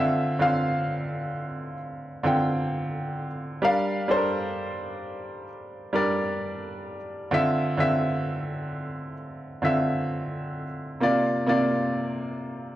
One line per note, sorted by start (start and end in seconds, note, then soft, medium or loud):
0.00 0.29 D3 medium
0.00 0.29 C4 medium
0.00 0.30 F4 medium
0.00 0.30 E5 medium
0.39 1.74 D3 medium
0.39 1.75 C4 medium
0.39 1.75 F4 medium
0.39 1.76 F5 medium
2.23 3.26 D3 medium
2.23 3.26 C4 medium
2.23 3.27 F4 medium
2.23 3.27 G5 medium
3.62 3.98 G3 medium
3.62 3.98 D4 medium
3.62 3.99 A#4 medium
3.62 3.99 F5 medium
4.08 5.43 G3 medium
4.08 5.44 D4 medium
4.08 4.17 A4 medium
4.08 5.45 C5 medium
4.17 5.48 A#4 medium
5.93 6.95 G3 medium
5.93 6.96 D4 medium
5.93 6.96 A#4 medium
5.93 6.97 D5 medium
7.31 7.67 D3 medium
7.31 7.67 C4 medium
7.31 7.68 F4 medium
7.31 7.68 E5 medium
7.77 9.13 D3 medium
7.77 9.13 C4 medium
7.77 9.14 F4 medium
7.77 9.14 E5 medium
9.62 10.64 D3 medium
9.62 10.65 C4 medium
9.62 10.65 F4 medium
9.62 10.66 E5 medium
11.00 11.36 C3 medium
11.00 11.37 A#3 medium
11.00 11.37 F4 medium
11.00 11.38 D5 medium
11.46 12.76 C3 medium
11.46 12.76 A#3 medium
11.46 12.76 F4 medium
11.46 12.76 D5 medium